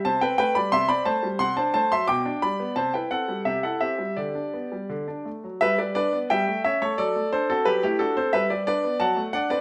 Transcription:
<<
  \new Staff \with { instrumentName = "Grand piano" } { \time 2/4 \key g \major \tempo 4 = 88 <c'' a''>16 <b' g''>16 <b' g''>16 <d'' b''>16 <e'' c'''>16 <d'' b''>16 <c'' a''>8 | <fis'' c'''>16 <c'' a''>16 <c'' a''>16 <e'' c'''>16 <g'' d'''>8 <d'' b''>8 | <c'' a''>16 <b' g''>16 <a' fis''>8 <g' e''>16 <a' fis''>16 <g' e''>8 | <g' d''>4. r8 |
<b' e''>16 <b' d''>16 <b' d''>8 <e'' g''>8 <cis'' e''>16 <a' cis''>16 | <a' d''>8 <a' c''>16 <fis' a'>16 <g' b'>16 <e' g'>16 <fis' a'>16 <a' c''>16 | <b' e''>16 <b' d''>16 <b' d''>8 <fis'' a''>8 <d'' fis''>16 <b' d''>16 | }
  \new Staff \with { instrumentName = "Grand piano" } { \time 2/4 \key g \major c16 c'16 a16 g16 c16 c'16 a16 g16 | c16 d'16 a16 fis16 b,16 d'16 g16 b16 | c16 e'16 c'16 g16 c16 e'16 c'16 g16 | d16 d'16 b16 g16 d16 d'16 a16 fis16 |
g16 g16 d'16 b16 g16 a16 cis'16 a16 | fis16 a16 d'16 c'16 fis16 a16 d'16 c'16 | g16 g16 d'16 b16 fis16 a16 d'16 c'16 | }
>>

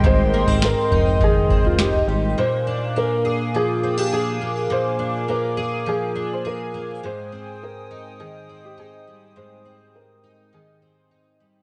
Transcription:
<<
  \new Staff \with { instrumentName = "Analog synth pad" } { \time 4/4 \key aes \lydian \tempo 4 = 103 << { <bes' ees'' c'''>1 | <bes' f'' d'''>1~ | <bes' f'' d'''>1 | <c'' g'' ees'''>1~ |
<c'' g'' ees'''>1 | } \\ { g''1 | aes''1~ | aes''1~ | aes''1~ |
aes''1 | } >> }
  \new Staff \with { instrumentName = "Felt piano" } { \time 4/4 \key aes \lydian c''4 bes'4 aes'8. f'16 g'8. r16 | c''4 bes'4 aes'8. g'16 aes'8. r16 | c''4 bes'4 aes'8. c''16 bes'8. r16 | c''4 bes'4 aes'8. g'16 aes'8. r16 |
c''4 bes'4 aes'4. r8 | }
  \new Staff \with { instrumentName = "Twelve-string acoustic guitar" } { \time 4/4 \key aes \lydian <aes, ees g c' ees'>8 bes16 c'8. ees'8 ees8 c'8 ees'8 g8 | bes,8 d'8 bes8 aes'8 f8 c'16 d'16 aes'8 bes8 | bes,8 d'8 bes8 aes'8 f8 d'8 aes'8 bes8 | aes,8 c'4 ees'8 ees8 c'8 ees'8 g8 |
aes,8 c'4 ees'8 ees8 c'8 ees'8 g8 | }
  \new Staff \with { instrumentName = "Analog synth bass" } { \clef bass \time 4/4 \key aes \lydian aes,,8. aes,,8 r16 f,,2 aes,,8 | r1 | r1 | r1 |
r1 | }
  \new DrumStaff \with { instrumentName = "Drums" } \drummode { \time 4/4 <bd tomfh>8. tomfh16 sn8 tomfh8 bd8 bd16 tomfh16 sn16 tomfh8. | r4 r4 r4 r4 | r4 r4 r4 r4 | r4 r4 r4 r4 |
r4 r4 r4 r4 | }
>>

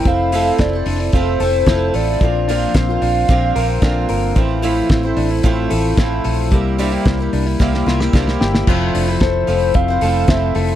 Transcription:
<<
  \new Staff \with { instrumentName = "Soft synth lead" } { \time 4/4 \key f \major \tempo 4 = 111 f''4 d''4 c''4. d''8~ | d''8 d''8 f''8 f''2 r8 | r1 | r1 |
r4 c''4 f''4 e''4 | }
  \new Staff \with { instrumentName = "Clean electric guitar" } { \time 4/4 \key f \major c'8 e'8 c'8 d'16 e'16 c'8 a'8 e'8 a'8 | f8 d'8 c'8 d'8 c'8 bes'8 d'8 bes'8 | e8 e'8 c'8 d'16 e'16 c'8 a'8 e'8 a'8 | g8 d'16 e'16 bes8 d'16 e'16 bes8 f'16 g'16 d'16 e'16 g'8 |
f8 d'16 e'16 a'4 c'8 a'8 c'8 a'8 | }
  \new Staff \with { instrumentName = "Twelve-string acoustic guitar" } { \time 4/4 \key f \major <a c' e' a'>8 <f a c' e' a'>8. <c' e' a'>8. <f a c' e' a'>8 <a c' e' a'>8 <f a c' e' a'>4 | <d bes c' f'>8 <bes, d bes c' f'>8. <bes c' f'>8. <bes, d bes c' f'>8 <d bes c' f'>8 <bes, d bes c' f'>4 | <f a c' e'>8 <a, f a c' e'>8. <a c' e'>8. <a, f a c' e'>8 <f a c' e'>8 <a, f a c' e'>4 | <c g bes e'>8 <c g bes e'>8. <g bes e'>8. <c g bes e'>8 <c g bes e'>8 <c g bes e'>4 |
<f a c' e'>8. <a c' e'>8. <f a c' e'>8. <a c' e'>16 <f a c' e'>8 <f a c' e'>4 | }
  \new Staff \with { instrumentName = "Fingered electric bass" } { \clef bass \time 4/4 \key f \major f,,4 f,,8 f,,8 f,,8 f,,8 f,,8 a,,8 | bes,,4 bes,,8 bes,,8 bes,,8 bes,,8 bes,,8 g,,8 | a,,4 a,,8 a,,8 a,,8 a,,8 a,,8 bes,,8 | c,4 c,8 c,8 c,8 c,8 c,8 g,,8 |
f,,8 f,,8 f,,8 f,,8 f,,8 f,,8 f,,8 f,,8 | }
  \new DrumStaff \with { instrumentName = "Drums" } \drummode { \time 4/4 <hh bd>8 hho8 <hh bd sn>8 hho8 <hh bd>8 hho8 <hh bd sn>8 hho8 | <hh bd>8 hho8 <hh bd sn>8 hho8 <hh bd>8 hho8 <hh bd sn>8 hho8 | <hh bd>8 hho8 <hh bd sn>8 hho8 <hh bd>8 hho8 <hh bd sn>8 hho8 | <hh bd>8 hho8 <hh bd sn>8 hho8 <bd sn>16 sn16 sn16 sn16 <bd sn>16 sn16 sn16 sn16 |
<cymc bd>8 hho8 <hh bd sn>8 hho8 <hh bd>8 hho8 <hh bd sn>8 hho8 | }
>>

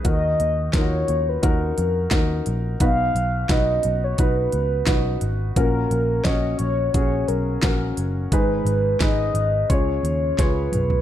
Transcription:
<<
  \new Staff \with { instrumentName = "Soft synth lead" } { \time 4/4 \key ees \minor \tempo 4 = 87 ees''4 des''8. ces''16 bes'4. r8 | f''4 dis''8. des''16 b'4. r8 | bes'4 ees''8 des''8 des''8 bes'4 r8 | ces''4 ees''4 des''4 ces''4 | }
  \new Staff \with { instrumentName = "Grand piano" } { \time 4/4 \key ees \minor <ees' ges' bes'>4 <ees' f' ges' bes'>4 <ees' ges' bes'>4 <ees' ges' bes'>4 | <dis' fis' b'>4 <dis' fis' b'>4 <dis' fis' b'>4 <dis' fis' b'>4 | <des' ges' bes'>4 <des' ges' des''>4 <des' ges' aes'>4 <des' ges' bes'>4 | <ees' aes' ces''>4 <ees' aes' ces''>4 <f' aes' des''>4 <f' aes' des''>4 | }
  \new Staff \with { instrumentName = "Grand piano" } { \clef bass \time 4/4 \key ees \minor ees4. r2 r8 | b,4. r2 r8 | bes,4. r2 r8 | aes,4. r8 des4. r8 | }
  \new Staff \with { instrumentName = "Picked electric bass" } { \clef bass \time 4/4 \key ees \minor ees,8 ees,8 ees,8 ees,8 ees,8 f,8 ees,8 bes,,8 | b,,8 b,,8 b,,8 b,,8 b,,8 des,8 b,,8 aes,,8 | bes,,8 bes,,8 bes,,8 bes,,8 bes,,8 ces,8 bes,,8 ges,,8 | aes,,8 aes,,8 aes,,8 aes,,8 des,8 ees,8 des,8 ces,8 | }
  \new DrumStaff \with { instrumentName = "Drums" } \drummode { \time 4/4 <hh bd>8 hh8 <hh bd sn>8 hh8 <hh bd>8 hh8 <hh bd sn>8 hh8 | <hh bd>8 hh8 <hh bd sn>8 hh8 <hh bd>8 hh8 <hh bd sn>8 hh8 | <hh bd>8 hh8 <hh bd sn>8 hh8 <hh bd>8 hh8 <hh bd sn>8 hh8 | <hh bd>8 hh8 <hh bd sn>8 hh8 <hh bd>8 hh8 <hh bd sn>8 <hh toml>16 tomfh16 | }
>>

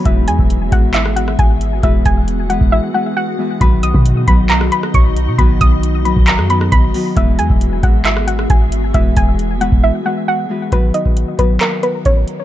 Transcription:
<<
  \new Staff \with { instrumentName = "Synth pluck" } { \time 4/4 \key b \major \tempo 4 = 135 e''8 gis''8 r8 fis''8 e''8 fis''8 gis''8 r8 | e''8 gis''8 r8 fis''8 e''8 fis''8 fis''8 r8 | b''8 dis'''8 r8 b''8 ais''8 b''8 cis'''8 r8 | b''8 dis'''8 r8 b''8 ais''8 b''8 b''8 r8 |
e''8 gis''8 r8 fis''8 e''8 fis''8 gis''8 r8 | e''8 gis''8 r8 fis''8 e''8 fis''8 fis''8 r8 | b'8 dis''8 r8 b'8 ais'8 b'8 cis''8 r8 | }
  \new Staff \with { instrumentName = "Ambient pad" } { \time 4/4 \key b \major << { e''1 | fis''1 | <dis' dis''>1~ | <dis' dis''>1 |
<fis' e''>1~ | <fis' e''>1 | r1 | } \\ { <b fis' gis'>1~ | <b fis' gis'>1~ | <b fis' gis'>1~ | <b fis' gis'>1 |
<b gis'>1~ | <b gis'>1 | r1 | } >> }
  \new Staff \with { instrumentName = "Harp" } { \time 4/4 \key b \major <e gis b fis' b'>4. <e gis b fis' ais'>2 r8 | <e gis b fis' b'>4. <e gis b fis' b'>4 <e gis b fis' b'>4 <e gis b fis' b'>8 | <dis fis b fis' b'>4. <dis fis b fis' b'>2 r8 | <dis fis b fis' b'>4. <dis fis b fis' b'>4 <dis fis b fis' b'>4 <dis fis b fis' b'>8 |
<e gis b fis' b'>4. <e gis b fis' ais'>2 r8 | <e gis b fis' b'>4. <e gis b fis' b'>4 <e gis b fis' b'>4 <e gis b fis' b'>8 | <dis fis b fis' b'>4. <dis fis b fis' b'>2 r8 | }
  \new Staff \with { instrumentName = "808-style bass" } { \clef bass \time 4/4 \key b \major e,,8 e,16 e,,8. gis,,4. gis,,4 | e,,8 e,,4~ e,,16 e,,16 r2 | b,,8. b,8. b,,4 r8 b,,8. b,16 | b,,8 b,,4~ b,,16 b,,8 fis,8. b,,8 r8 |
e,,8 e,16 e,,8. gis,,4. gis,,4 | e,,8 e,,4~ e,,16 e,,16 r2 | r1 | }
  \new DrumStaff \with { instrumentName = "Drums" } \drummode { \time 4/4 <hh bd>8 hh16 bd16 hh8 <hh bd>8 <hc hh>16 ss16 hh16 ss16 <hh bd>8 hh8 | <hh bd>8 <hh bd>8 hh8 hh16 bd16 r4 r4 | <hh bd>8 hh16 bd16 hh8 <hh bd>8 <hc hh>16 ss16 hh16 ss16 <hh bd>8 hh8 | <hh bd>8 <hh bd>8 hh8 hh16 bd16 <hc hh>16 ss16 hh16 ss16 <hh bd>8 hho8 |
<hh bd>8 hh16 bd16 hh8 <hh bd>8 <hc hh>16 ss16 hh16 ss16 <hh bd>8 hh8 | <hh bd>8 <hh bd>8 hh8 hh16 bd16 r4 r4 | <hh bd>8 hh16 bd16 hh8 <hh bd>8 <hc hh>8 hh8 <hh bd>8 hh8 | }
>>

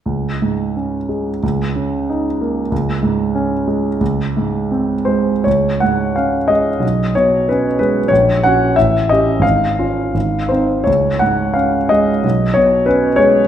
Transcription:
<<
  \new Staff \with { instrumentName = "Grand piano" } { \time 2/4 \key des \major \tempo 4 = 90 r2 | r2 | r2 | r4. c''8 |
des''8 ges''8 f''8 ees''8~ | ees''8 des''8 ces''8 ces''8 | des''8 ges''8 fes''8 ees''8 | f''4. c''8 |
des''8 ges''8 f''8 ees''8~ | ees''8 des''8 ces''8 des''8 | }
  \new Staff \with { instrumentName = "Grand piano" } { \clef bass \time 2/4 \key des \major des,8 aes,8 des'8 aes8 | des,8 des8 ees'8 bes8 | des,8 aes,8 des'8 aes8 | des,8 aes,8 c'8 aes8 |
des,8 aes,8 des'8 aes8 | ces,8 ces8 des'8 aes8 | bes,,8 <des' ges'>8 a,,8 <cis' g'>8 | aes,,8 <des' f'>8 aes,,8 <c' ees'>8 |
des,8 aes,8 des'8 aes8 | ces,8 ces8 des'8 aes8 | }
>>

